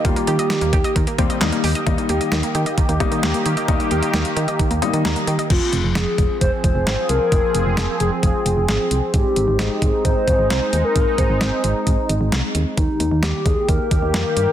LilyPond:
<<
  \new Staff \with { instrumentName = "Soft synth lead" } { \time 4/4 \key ees \mixolydian \tempo 4 = 132 g'2. r4 | r1 | r1 | f'4 aes'4 c''8 c''8 c''8 bes'8~ |
bes'4. aes'8 aes'4 aes'8. r16 | g'4 aes'4 c''4 c''8. bes'16~ | bes'8 c''2 r4. | ees'4 g'8 aes'8 bes'4 bes'4 | }
  \new Staff \with { instrumentName = "Synth arpeggio sound" } { \time 4/4 \key ees \mixolydian ees16 bes16 g'16 ees''16 ees16 bes16 g'16 ees''16 ees16 bes16 g'16 ees''16 ees16 bes16 g'16 ees''16 | ees16 bes16 g'16 ees''16 ees16 bes16 g'16 ees''16 ees16 bes16 g'16 ees''16 ees16 bes16 g'16 ees''16 | ees16 bes16 g'16 ees''16 ees16 bes16 g'16 ees''16 ees16 bes16 g'16 ees''16 ees16 bes16 g'16 ees''16 | r1 |
r1 | r1 | r1 | r1 | }
  \new Staff \with { instrumentName = "Analog synth pad" } { \time 4/4 \key ees \mixolydian << { <ees g'>1 | <ees g'>1~ | <ees g'>1 | <f aes'>1~ |
<f aes'>1 | <aes ees'>1~ | <aes ees'>1 | <ees g'>1 | } \\ { bes1 | bes1~ | bes1 | c'1~ |
c'1~ | c'1~ | c'1 | bes1 | } >> }
  \new Staff \with { instrumentName = "Grand piano" } { \time 4/4 \key ees \mixolydian r1 | r1 | r2 r8 ees''8 bes''4 | r1 |
r1 | r1 | r1 | r1 | }
  \new Staff \with { instrumentName = "Grand piano" } { \time 4/4 \key ees \mixolydian <g bes f'>4. r4 <g bes c'>8 <g bes ees'>8 r8 | <g bes ees'>4. r4 <g bes ees'>4 r8 | <g bes ees'>4. r4 <g bes ees'>4 r8 | r1 |
r1 | r1 | r1 | r1 | }
  \new Staff \with { instrumentName = "FM bass" } { \clef bass \time 4/4 \key ees \mixolydian ees,16 r16 ees16 r8 ees,16 ees,16 r16 ees,16 r16 ees,16 r16 ees,16 r16 ees,16 r16 | ees,16 r16 ees,16 r16 ees,16 r16 ees16 r8 ees,16 r16 ees16 ees,16 r16 ees16 r16 | ees,16 r16 ees,16 r16 ees,16 r16 ees16 r8 ees,16 r16 ees16 ees,16 r16 ees16 r16 | f,,16 r16 f,,16 f,,16 f,,16 r16 f,,16 r16 f,,16 r16 f,,16 f,,16 aes,,16 r16 c,16 r16 |
f,,16 r16 f,,16 f,,16 f,,16 r16 f,,16 r16 f,,16 r16 f,,16 f,,16 aes,,16 r16 c,16 r16 | aes,,16 r16 aes,,16 aes,,16 aes,,16 r16 aes,,16 r16 aes,,16 r16 aes,,16 aes,,16 c,16 r16 ees,16 r16 | aes,,16 r16 aes,,16 aes,,16 aes,,16 r16 aes,,16 r16 aes,,16 r16 aes,,16 aes,,16 c,16 r16 ees,16 r16 | ees,16 r16 ees,16 ees,16 ees,16 r16 ees,16 r16 ees,16 r16 ees,16 ees,16 f,16 r16 g,16 r16 | }
  \new DrumStaff \with { instrumentName = "Drums" } \drummode { \time 4/4 <hh bd>16 hh16 hh16 hh16 <hh sn>16 hh16 <hh bd>16 hh16 <hh bd>16 hh16 <hh bd>16 hh16 <hc hh sn>16 hh16 hho16 hh16 | <hh bd>16 hh16 hh16 hh16 <hh sn>16 hh16 hh16 hh16 <hh bd>16 hh16 <hh bd>16 hh16 <hh sn>16 hh16 hh16 hh16 | <hh bd>16 hh16 hh16 hh16 <hh sn>16 hh16 hh16 hh16 <hh bd>16 hh16 hh16 hh16 <hh sn>16 hh16 hh16 hh16 | <cymc hh bd>8 hh8 <hh sn>8 <hh bd>8 <hh bd>8 <hh bd>8 <hh sn>8 hh8 |
<hh bd>8 hh8 <hh sn>8 hh8 <hh bd>8 hh8 <hh sn>8 hh8 | <hh bd>8 hh8 <hh sn>8 <hh bd>8 <hh bd>8 <hh bd>8 <hh sn>8 hh8 | <hh bd>8 <hh bd>8 <hh sn>8 hh8 <hh bd>8 hh8 <hh sn>8 hh8 | <hh bd>8 hh8 <hh sn>8 <hh bd>8 <hh bd>8 <hh bd>8 <hh sn>8 hh8 | }
>>